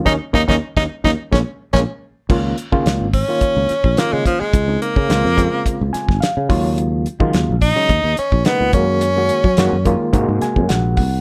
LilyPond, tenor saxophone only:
\new Staff \with { instrumentName = "Tenor saxophone" } { \time 4/4 \key des \major \tempo 4 = 107 ees'16 r16 ees'16 ees'16 r16 ees'16 r16 ees'16 r16 des'16 r8 des'16 r8. | r4. des'4. bes16 aes16 f16 aes16~ | aes8 bes2 r4. | r4. ees'4 cis'8 b8 des'8~ |
des'2 r2 | }